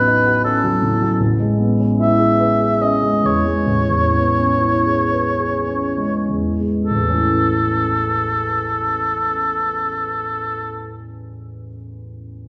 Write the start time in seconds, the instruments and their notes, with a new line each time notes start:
Already playing: grand piano A1 F#3 B3 C#4 D#4 F#4, oboe B4
0.06 grand piano D#4
0.26 grand piano F#4
0.44 grand piano C#4, oboe A4
0.64 grand piano F#3
0.82 grand piano A2
1.02 grand piano F#3
1.20 grand piano A1
1.40 grand piano G#3
1.58 grand piano B3
1.80 grand piano C#4
2.00 grand piano E4, oboe E5
2.19 grand piano G#4
2.40 grand piano B4
2.60 grand piano G#4
2.81 grand piano C#4, oboe D#5
3.02 grand piano G#3
3.23 grand piano E2, oboe C#5
3.45 grand piano G#3
3.66 grand piano A1
3.89 grand piano E2
4.13 grand piano B3
4.37 grand piano C#4
4.61 grand piano E4
4.86 grand piano G#4
5.12 grand piano B4
5.39 grand piano G#4
5.67 grand piano C#4
5.98 grand piano G#3
6.29 grand piano E2
6.61 grand piano G#3
6.84 oboe A4
6.90 grand piano A1
6.95 grand piano E2
6.99 grand piano E3
7.04 grand piano A3
7.09 grand piano C#4
7.14 grand piano E4